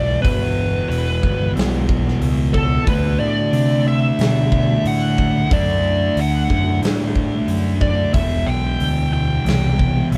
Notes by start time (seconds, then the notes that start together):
Already playing: B1 E2 B2 E3 B3 F#4 D5
0.22 G1 E2 B2 E3 B4, kick, open hi-hat
0.89 E1 B4, open hi-hat
1.22 G1 E2 B2 E3, kick
1.54 B1 E2 B2 E3, open hi-hat
1.59 snare
1.89 kick
2.08 snare
2.20 C#2, open hi-hat
2.54 A4, kick
2.85 D2 D3 A3 D4 E4 B4, kick, open hi-hat
3.20 A2 D5
3.53 C3, open hi-hat
3.84 D3 A3 D4 E5
4.18 B2 D3 A3 D4, snare, open hi-hat
4.52 kick
4.85 A2 F#5, open hi-hat
5.18 kick
5.49 F#2 D3 A3 D4 D5, kick, open hi-hat
6.15 D2 F#5, open hi-hat
6.48 F#2 D3 A3 D4, kick
6.81 A2 D3 A3 D4, open hi-hat
6.85 snare
7.15 kick
7.48 F#2, open hi-hat
7.81 D5, kick
8.12 E1 E2 B2 E3 F#3 B3 E5, kick, open hi-hat
8.46 B1 G5
8.80 D2, open hi-hat
9.13 E2 B2 E3 G5
9.45 C2 E2 B2, open hi-hat
9.49 E3, snare
9.79 kick
10.11 B1, open hi-hat